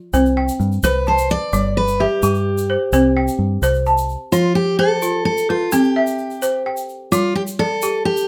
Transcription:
0.13 0.49 C2 medium
0.13 0.60 C4 medium
0.13 0.83 C5 medium
0.13 shaker medium
0.26 shaker soft
0.37 1.07 G5 medium
0.49 shaker soft
0.60 0.77 G2 medium
0.60 shaker soft
0.72 shaker soft
0.83 1.36 C2 medium
0.83 1.08 B4 loud
0.83 1.30 C5 medium
0.83 shaker medium
1.07 1.31 C5 medium
1.07 1.77 A5 medium
1.07 shaker soft
1.18 shaker medium
1.30 1.74 D5 loud
1.30 shaker soft
1.53 2.06 G1 medium
1.53 2.00 G3 medium
1.53 shaker medium
1.77 2.01 B4 medium
1.88 shaker soft
2.00 3.12 G4 medium
2.00 2.69 E5 medium
2.23 2.76 G2 medium
2.23 2.69 G4 medium
2.23 shaker medium
2.34 shaker soft
2.58 shaker medium
2.70 2.92 C5 medium
2.92 3.28 C2 medium
2.92 3.39 C4 medium
2.92 3.62 C5 medium
2.92 shaker medium
3.17 3.86 G5 medium
3.28 shaker medium
3.39 3.56 G2 medium
3.62 4.15 C2 medium
3.62 4.09 C5 medium
3.62 shaker medium
3.74 shaker soft
3.86 4.56 A5 medium
3.86 shaker soft
3.98 shaker medium
4.09 shaker soft
4.32 4.79 F3 medium
4.32 4.54 F4 medium
4.32 shaker medium
4.55 4.78 G4 medium
4.79 5.24 A4 loud
4.79 5.49 C5 medium
5.02 5.49 F4 medium
5.02 shaker medium
5.25 5.49 A4 medium
5.38 shaker medium
5.49 5.72 F4 medium
5.49 5.96 B4 medium
5.72 6.19 C4 medium
5.72 6.62 G4 medium
5.72 shaker medium
5.84 shaker soft
5.96 6.66 E5 medium
6.07 shaker medium
6.18 shaker soft
6.30 shaker soft
6.42 6.89 C5 medium
6.42 shaker medium
6.66 7.36 G5 medium
6.77 shaker medium
6.89 shaker soft
7.12 7.59 G3 medium
7.12 7.34 F4 medium
7.12 shaker medium
7.35 7.42 G4 medium
7.47 shaker medium
7.59 8.05 A4 loud
7.59 8.28 D5 medium
7.82 8.28 G4 medium
7.82 shaker medium
8.05 8.28 G4 loud
8.17 shaker medium

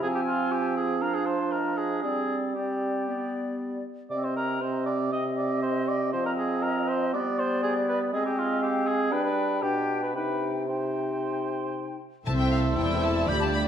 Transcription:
0.02 1.99 F3 medium
0.02 1.04 C4 medium
0.02 0.08 G#4 medium
0.02 0.70 G#5 soft
0.15 0.21 G4 medium
0.27 0.53 F4 medium
0.52 0.76 G4 medium
0.76 1.03 G#4 medium
1.01 2.03 D4 soft
1.01 1.16 A#4 medium
1.01 1.54 F5 soft
1.14 1.28 G#4 medium
1.26 1.53 C5 medium
1.52 1.78 A#4 medium
1.52 2.05 D#5 soft
1.77 2.02 G#4 medium
2.02 3.80 G3 soft
2.02 2.54 C4 soft
2.02 2.36 G#4 medium
2.02 2.55 D5 soft
2.54 3.09 C4 soft
2.54 3.54 G4 soft
2.54 3.06 D5 soft
3.06 3.85 B3 soft
3.06 3.83 D5 soft
4.10 6.15 C3 soft
4.10 4.58 C4 soft
4.10 4.25 D5 medium
4.10 4.58 D#5 soft
4.24 4.36 C5 soft
4.36 4.63 A#4 medium
4.61 5.11 C4 soft
4.61 4.85 C5 medium
4.61 5.12 D#5 soft
4.86 5.11 D5 medium
5.12 6.11 C4 soft
5.12 6.11 D#5 soft
5.12 5.24 D#5 medium
5.37 5.62 D5 medium
5.62 5.89 C5 medium
5.88 6.12 D5 medium
6.13 7.15 F3 soft
6.13 7.15 C4 medium
6.13 6.25 C5 medium
6.13 7.16 D#5 soft
6.25 6.31 A#4 medium
6.38 6.64 G#4 medium
6.63 6.90 A#4 medium
6.88 7.13 C5 medium
7.13 8.12 G3 medium
7.13 8.13 B3 soft
7.13 7.40 D5 medium
7.13 8.13 D5 medium
7.39 7.62 C5 medium
7.63 7.74 G#4 medium
7.89 8.00 B4 medium
8.13 9.12 G#3 medium
8.13 9.13 C4 medium
8.13 8.25 G#4 medium
8.13 8.63 D#5 medium
8.26 8.40 G4 medium
8.38 8.62 F4 medium
8.62 8.88 G4 medium
8.62 9.13 F5 medium
8.87 9.14 G#4 medium
9.11 9.61 G3 medium
9.11 9.62 D4 medium
9.11 9.24 B4 medium
9.11 9.62 G5 medium
9.24 9.64 B4 medium
9.62 10.16 B2 soft
9.62 10.14 D4 soft
9.62 10.02 G4 medium
9.62 10.14 G5 soft
10.03 10.15 B4 soft
10.14 12.00 C3 soft
10.14 10.67 D#4 soft
10.14 10.49 B4 medium
10.14 10.67 G5 soft
10.68 11.98 D#4 soft
10.68 11.97 C5 soft
10.68 11.98 G5 soft
12.26 12.74 C2 soft
12.26 12.99 C3 medium
12.26 13.29 A3 soft
12.26 12.79 C4 soft
12.26 13.25 C4 soft
12.26 13.24 E4 soft
12.26 13.24 A4 soft
12.26 12.74 C5 soft
12.26 13.29 C5 soft
12.26 12.74 E5 soft
12.26 12.31 A5 medium
12.26 13.30 E6 soft
12.40 12.52 G5 soft
12.52 12.60 F5 soft
12.77 13.28 E1 soft
12.77 13.28 E2 soft
12.77 13.30 E4 soft
12.77 13.68 D5 soft
12.77 13.28 E5 medium
12.77 13.02 G5 medium
13.03 13.29 A5 medium
13.28 13.68 D2 soft
13.28 13.68 G3 soft
13.28 13.68 F4 soft
13.28 13.68 G4 soft
13.28 13.68 D5 soft
13.28 13.68 D5 medium
13.28 13.41 B5 medium
13.28 13.68 G6 soft
13.42 13.54 A5 medium
13.54 13.62 B5 medium

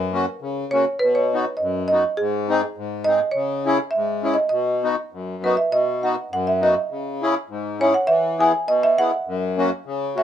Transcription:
0.00 0.25 F#2 medium
0.00 0.74 A#4 medium
0.12 0.25 A#3 medium
0.12 0.25 C#4 medium
0.12 0.26 F#4 medium
0.42 0.85 C#3 medium
0.71 0.85 A#3 soft
0.71 0.85 C#4 soft
0.71 0.85 F#4 medium
0.71 0.97 C#5 medium
0.99 1.45 B2 medium
0.99 1.15 B4 medium
1.15 1.60 C#5 medium
1.33 1.44 B3 medium
1.33 1.45 D#4 medium
1.33 1.45 F#4 medium
1.57 2.04 F#2 medium
1.57 1.86 D#5 medium
1.88 2.03 B3 soft
1.88 2.18 D#5 medium
1.92 2.04 D#4 soft
1.92 2.04 F#4 soft
2.17 2.63 G#2 medium
2.17 3.09 G#4 medium
2.49 2.61 C4 medium
2.49 2.61 D#4 medium
2.49 2.62 G#4 medium
2.78 3.21 G#2 medium
3.04 3.20 C4 medium
3.04 3.20 D#4 medium
3.04 3.20 G#4 medium
3.04 3.34 D#5 loud
3.31 3.78 C#3 medium
3.31 3.93 C#5 medium
3.66 3.78 C#4 medium
3.66 3.78 E4 medium
3.66 3.78 G#4 medium
3.91 4.33 E5 medium
3.95 4.38 G#2 medium
4.23 4.36 C#4 medium
4.23 4.36 E4 soft
4.23 4.36 G#4 medium
4.34 4.48 D#5 medium
4.49 4.96 B2 medium
4.49 5.05 D#5 medium
4.83 4.95 B3 medium
4.83 4.96 D#4 medium
4.83 4.96 F#4 medium
5.13 5.57 F#2 medium
5.43 5.55 B3 soft
5.43 5.56 D#4 soft
5.43 5.56 F#4 medium
5.43 5.57 B4 medium
5.57 5.63 E5 medium
5.72 6.16 B2 medium
5.72 6.01 D#5 medium
6.03 6.15 B3 medium
6.03 6.15 D#4 medium
6.03 6.16 F#4 medium
6.03 6.16 F#5 medium
6.31 6.76 F#2 medium
6.31 6.48 F#5 medium
6.47 6.54 E5 medium
6.61 6.75 B3 medium
6.61 6.74 D#4 soft
6.61 6.75 F#4 medium
6.61 7.78 D#5 medium
6.90 7.35 C#3 medium
7.22 7.35 C#4 medium
7.22 7.35 E4 medium
7.22 7.35 G#4 medium
7.50 7.94 G#2 medium
7.80 7.93 C#4 medium
7.80 7.94 E4 soft
7.80 7.94 G#4 medium
7.80 7.87 C#5 loud
7.94 8.08 F#5 medium
8.07 8.53 E3 medium
8.07 8.40 E5 medium
8.39 8.52 B3 medium
8.39 8.52 E4 medium
8.39 8.52 G#4 medium
8.39 8.69 G#5 medium
8.67 9.12 B2 medium
8.67 8.75 D#5 medium
8.83 8.99 E5 medium
8.98 9.11 B3 medium
8.98 9.11 E4 medium
8.98 9.11 G#4 soft
8.98 10.13 F#5 loud
9.27 9.71 F#2 medium
9.57 9.70 A#3 medium
9.57 9.70 C#4 medium
9.57 9.70 F#4 medium
9.86 10.23 C#3 medium
10.16 10.23 A#3 soft
10.16 10.23 C#4 soft
10.16 10.23 F#4 soft
10.16 10.23 E5 medium

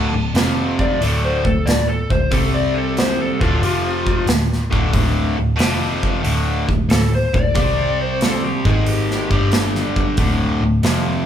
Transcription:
0.00 0.10 D1 medium
0.00 0.13 D2 medium
0.00 0.13 A2 medium
0.00 0.13 D3 medium
0.13 0.33 D1 medium
0.13 0.31 D2 medium
0.13 0.31 A2 medium
0.34 0.96 F1 medium
0.34 1.00 F2 medium
0.34 1.00 C3 medium
0.34 1.01 F3 medium
0.34 snare medium
0.34 open hi-hat soft
0.79 1.01 D5 medium
0.79 kick medium
1.01 1.42 D1 medium
1.01 1.44 D2 medium
1.01 1.44 A2 medium
1.01 1.44 D3 medium
1.01 1.23 A4 medium
1.01 open hi-hat soft
1.24 1.45 C5 medium
1.45 1.65 D1 medium
1.45 1.62 D2 medium
1.45 1.62 A2 medium
1.45 1.66 A4 medium
1.45 kick medium
1.65 2.07 D1 medium
1.65 2.02 D2 medium
1.65 2.02 A2 medium
1.65 1.87 D5 medium
1.65 snare loud
1.65 open hi-hat soft
1.88 2.09 A4 medium
2.10 2.30 D1 medium
2.10 2.28 D2 medium
2.10 2.28 A2 medium
2.10 2.31 C5 medium
2.10 kick medium
2.31 3.37 C2 medium
2.31 3.40 C3 medium
2.31 3.40 G3 medium
2.31 3.40 C4 medium
2.31 2.53 A4 medium
2.31 kick medium
2.31 open hi-hat soft
2.54 2.75 D5 medium
2.74 2.96 A4 medium
2.97 3.19 C5 medium
2.97 snare loud
2.97 open hi-hat soft
3.21 3.41 A4 medium
3.40 3.61 D1 medium
3.40 3.62 D2 medium
3.40 3.62 A2 medium
3.40 3.62 D3 medium
3.40 4.25 F4 medium
3.40 kick medium
3.62 4.24 F1 medium
3.62 4.28 F2 medium
3.62 4.28 C3 medium
3.62 4.28 F3 medium
3.62 open hi-hat soft
4.07 kick medium
4.26 4.68 D1 medium
4.26 4.64 D2 medium
4.26 4.64 A2 medium
4.26 snare loud
4.26 open hi-hat soft
4.53 snare soft
4.70 4.92 D1 medium
4.70 4.91 D2 medium
4.70 4.92 A2 medium
4.70 4.93 D3 medium
4.70 kick medium
4.92 5.35 D1 medium
4.92 5.36 D2 medium
4.92 5.36 A2 medium
4.92 5.37 D3 medium
4.92 kick medium
4.92 open hi-hat soft
5.38 5.58 D1 medium
5.38 5.56 D2 medium
5.38 5.57 A2 medium
5.56 6.21 F1 medium
5.56 6.22 F2 medium
5.56 6.22 C3 medium
5.56 6.23 F3 medium
5.56 open hi-hat soft
5.60 snare loud
6.03 kick medium
6.22 6.66 D1 medium
6.22 6.66 D2 medium
6.22 6.67 A2 medium
6.22 6.67 D3 medium
6.22 open hi-hat soft
6.67 6.88 D1 medium
6.67 6.85 D2 medium
6.67 6.85 A2 medium
6.67 kick medium
6.89 7.31 D1 medium
6.89 7.25 D2 medium
6.89 7.25 A2 medium
6.89 7.12 A4 medium
6.89 snare loud
6.89 open hi-hat soft
7.15 7.35 C5 medium
7.33 7.54 D1 medium
7.33 7.51 D2 medium
7.33 7.55 A2 medium
7.33 7.99 D5 loud
7.33 kick medium
7.55 8.62 C2 medium
7.55 8.64 C3 medium
7.55 8.64 G3 medium
7.55 8.64 C4 loud
7.55 kick medium
7.55 open hi-hat soft
8.02 8.22 C5 medium
8.21 8.44 A4 medium
8.21 snare medium
8.21 open hi-hat soft
8.45 8.66 G4 medium
8.65 9.27 G#1 medium
8.65 9.31 G#2 medium
8.65 9.31 D#3 medium
8.65 9.31 G#3 medium
8.65 8.88 G#4 medium
8.65 kick medium
8.86 9.52 G4 loud
8.86 open hi-hat soft
9.11 snare soft
9.30 10.14 G1 medium
9.30 10.18 G2 medium
9.30 10.18 D3 medium
9.30 10.18 G3 medium
9.30 kick medium
9.52 snare loud
9.52 open hi-hat soft
9.75 snare soft
9.96 kick medium
10.17 10.60 D1 medium
10.17 10.62 D2 medium
10.17 10.62 A2 medium
10.17 10.62 D3 medium
10.17 kick loud
10.17 open hi-hat soft
10.61 10.81 D1 medium
10.61 10.80 D2 medium
10.61 10.81 A2 medium
10.82 11.26 F1 medium
10.82 11.26 F2 medium
10.82 11.26 C3 medium
10.82 11.26 F3 medium
10.82 snare loud
10.82 open hi-hat soft

